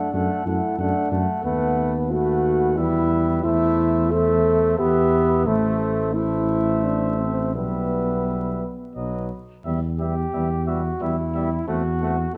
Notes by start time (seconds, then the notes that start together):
Already playing: A3 D4 A4 F#5
0.12 F#2 A3 A4 F#5
0.45 F#2 A3 E4 A4 F#5
0.78 F#2 A3 D4 A4 F#5
1.11 F#2 A3 A4 F#5
1.44 D#2 A3 B3 B4 F#5
2.11 A3 F#4 B4 F#5
2.78 E2 G3 E4 B4 E5
3.43 E2 A3 E4 C5 E5
4.11 A3 A4 C5 E5
4.78 E2 B3 G4 B4 E5
5.45 A1 A3 C5 E5
6.14 A3 E4 C5 E5
6.84 D4
7.20 C4
7.55 B1 G3 B3 B4 E5
8.95 B1 F#3 B4 D#5
9.65 E2 G3 B3 E5
9.99 G3 B3 G4 E5
10.33 E2 G3 B3 E5
10.67 G3 B3 F#4 E5
11.00 E2 G3 B3 E4 E5
11.35 G3 B3 E5
11.67 E2 A3 C4 F#4 F#5
12.01 A3 C4 F#5
12.33 A3